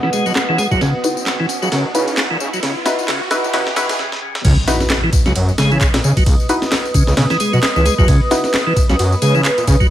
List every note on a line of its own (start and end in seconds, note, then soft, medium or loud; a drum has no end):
0.00 0.10 E3 medium
0.00 3.95 B4 medium
0.00 3.96 F#5 medium
0.00 3.95 D#6 medium
0.00 snare medium
0.00 riser medium
0.13 0.25 G#3 medium
0.13 ride medium
0.13 tambourine medium
0.26 0.32 B2 medium
0.26 0.32 F#3 loud
0.26 tambourine soft
0.35 snare loud
0.35 clap loud
0.35 ride medium
0.35 tambourine soft
0.49 0.62 C#2 loud
0.49 0.58 E3 loud
0.58 0.67 G#3 medium
0.58 ride medium
0.58 tambourine medium
0.71 0.77 E2 medium
0.71 0.81 F#3 loud
0.71 kick medium
0.71 tambourine soft
0.81 0.89 C#2 loud
0.81 0.94 C#3 loud
0.81 snare medium
0.81 ride medium
0.81 tambourine soft
1.04 1.71 D#4 medium
1.04 1.71 E4 medium
1.04 1.71 F#4 medium
1.04 1.71 B4 loud
1.04 ride medium
1.04 tambourine medium
1.17 tambourine soft
1.26 snare medium
1.26 clap loud
1.26 ride medium
1.26 tambourine soft
1.40 1.46 E3 loud
1.49 ride medium
1.49 tambourine medium
1.62 1.68 C#2 loud
1.62 1.69 F#3 medium
1.62 tambourine soft
1.72 1.87 F#2 loud
1.72 1.84 C#3 medium
1.72 snare medium
1.72 ride medium
1.72 tambourine soft
1.95 2.23 C#3 medium
1.95 2.61 D#4 medium
1.95 2.61 E4 medium
1.95 2.61 F#4 medium
1.95 2.61 B4 loud
1.95 ride medium
1.95 tambourine medium
2.08 ride soft
2.08 tambourine soft
2.17 snare medium
2.17 clap loud
2.17 ride medium
2.17 tambourine soft
2.31 2.37 A#2 medium
2.31 2.37 E3 loud
2.40 2.48 C#3 loud
2.40 tambourine medium
2.53 2.60 F#3 medium
2.53 tambourine soft
2.63 2.71 C#2 loud
2.63 2.75 C#3 loud
2.63 snare medium
2.63 ride medium
2.63 tambourine soft
2.86 3.07 D#4 loud
2.86 3.07 E4 medium
2.86 3.07 F#4 medium
2.86 3.07 B4 loud
2.86 snare medium
2.86 ride medium
2.86 tambourine medium
2.99 tambourine soft
3.08 3.21 C#3 loud
3.08 snare medium
3.08 clap loud
3.08 ride medium
3.08 tambourine soft
3.31 3.52 D#4 loud
3.31 3.52 E4 loud
3.31 3.52 F#4 medium
3.31 3.52 B4 loud
3.31 snare medium
3.31 ride medium
3.31 tambourine medium
3.44 3.50 C#2 loud
3.44 tambourine soft
3.54 3.66 C#3 loud
3.54 3.62 C#3 loud
3.54 3.75 D#4 loud
3.54 3.75 E4 medium
3.54 3.75 F#4 medium
3.54 3.75 B4 loud
3.54 snare medium
3.54 ride medium
3.54 tambourine soft
3.67 snare medium
3.76 3.89 C#3 loud
3.76 3.98 D#4 loud
3.76 3.98 E4 medium
3.76 3.98 F#4 medium
3.76 3.98 B4 loud
3.76 snare loud
3.76 ride medium
3.76 tambourine medium
3.89 3.96 G#2 loud
3.89 snare medium
3.89 ride medium
3.89 tambourine soft
3.99 4.12 C#3 loud
3.99 snare medium
4.12 snare medium
4.22 4.35 C#3 loud
4.35 snare medium
4.45 4.53 C#2 loud
4.45 4.57 C#3 loud
4.45 9.90 B4 medium
4.45 9.90 D#6 loud
4.45 kick loud
4.45 crash medium
4.45 ride medium
4.45 tambourine soft
4.45 impact medium
4.67 6.47 D#4 medium
4.67 6.47 E4 medium
4.67 6.47 F#4 medium
4.67 6.47 B4 loud
4.67 snare medium
4.67 ride medium
4.67 tambourine medium
4.80 snare soft
4.80 tambourine soft
4.90 snare loud
4.90 clap loud
4.90 ride medium
4.90 tambourine soft
5.03 5.10 E3 loud
5.13 kick loud
5.13 ride medium
5.13 tambourine medium
5.26 5.32 C#2 loud
5.26 5.33 F#3 medium
5.26 snare soft
5.26 tambourine soft
5.36 5.51 F#2 loud
5.36 ride medium
5.36 tambourine soft
5.49 tambourine soft
5.58 5.86 C#3 medium
5.58 5.71 G#3 medium
5.58 snare loud
5.58 ride medium
5.58 tambourine medium
5.71 5.78 E3 loud
5.71 tambourine soft
5.81 kick medium
5.81 clap loud
5.81 ride medium
5.81 tambourine soft
5.94 6.00 A#2 medium
5.94 snare loud
5.94 ride medium
5.94 tambourine soft
6.04 6.12 C#3 loud
6.04 6.13 C#3 loud
6.04 tambourine medium
6.17 6.23 F#3 medium
6.17 kick medium
6.17 ride medium
6.17 tambourine soft
6.26 6.35 C#2 loud
6.26 kick loud
6.26 ride medium
6.26 tambourine soft
6.40 tambourine soft
6.49 8.29 D#4 medium
6.49 8.29 E4 medium
6.49 8.29 F#4 medium
6.49 8.29 B4 loud
6.49 ride medium
6.49 tambourine medium
6.62 snare medium
6.62 tambourine soft
6.72 snare loud
6.72 clap loud
6.72 ride medium
6.72 tambourine soft
6.85 tambourine soft
6.94 7.03 C#3 loud
6.94 kick loud
6.94 ride medium
6.94 tambourine medium
7.07 7.14 C#2 loud
7.07 snare soft
7.07 tambourine soft
7.17 7.26 B2 medium
7.17 7.26 C#3 loud
7.17 snare loud
7.17 ride medium
7.17 tambourine soft
7.30 7.37 E3 medium
7.30 snare medium
7.30 tambourine soft
7.40 7.53 G#3 medium
7.40 ride medium
7.40 tambourine medium
7.53 7.59 B2 medium
7.53 7.60 F#3 loud
7.53 tambourine soft
7.63 snare loud
7.63 clap loud
7.63 ride medium
7.63 tambourine soft
7.76 7.89 C#2 loud
7.76 7.85 E3 loud
7.76 tambourine soft
7.86 7.94 G#3 medium
7.86 ride medium
7.86 tambourine medium
7.98 8.05 E2 medium
7.98 8.08 F#3 loud
7.98 kick loud
7.98 tambourine soft
8.08 8.16 C#2 loud
8.08 8.21 C#3 loud
8.08 kick loud
8.08 ride medium
8.08 tambourine soft
8.31 9.90 D#4 loud
8.31 9.90 E4 medium
8.31 9.90 F#4 medium
8.31 9.90 B4 loud
8.31 snare medium
8.31 ride medium
8.31 tambourine medium
8.44 snare soft
8.44 tambourine soft
8.54 snare loud
8.54 clap loud
8.54 ride medium
8.54 tambourine soft
8.67 8.73 E3 loud
8.76 kick loud
8.76 ride medium
8.76 tambourine medium
8.89 8.96 C#2 loud
8.89 8.96 F#3 medium
8.89 snare soft
8.89 tambourine soft
8.99 9.15 F#2 loud
8.99 ride medium
8.99 tambourine soft
9.12 tambourine soft
9.22 9.50 C#3 medium
9.22 9.34 G#3 medium
9.22 ride medium
9.22 tambourine medium
9.35 9.41 E3 loud
9.35 tambourine soft
9.45 clap loud
9.45 ride medium
9.45 tambourine soft
9.58 9.64 A#2 medium
9.58 ride soft
9.58 tambourine soft
9.67 9.76 C#3 loud
9.67 kick loud
9.67 ride medium
9.67 tambourine medium
9.80 9.87 F#3 medium
9.80 kick loud
9.80 tambourine soft